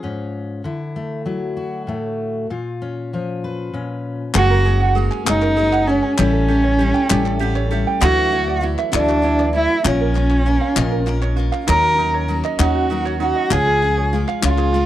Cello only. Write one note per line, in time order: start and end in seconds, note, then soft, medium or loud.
4.35 4.92 F#4 loud
5.29 5.89 D#4 loud
5.87 6.18 C#4 loud
6.20 7.68 C#4 loud
8.01 8.59 F#4 loud
8.94 9.51 D4 loud
9.56 9.84 E4 loud
9.87 11.35 C#4 loud
11.69 12.25 A#4 loud
12.60 13.17 F#4 medium
13.22 13.53 F#4 loud
13.51 14.12 G#4 loud
14.45 14.86 F4 loud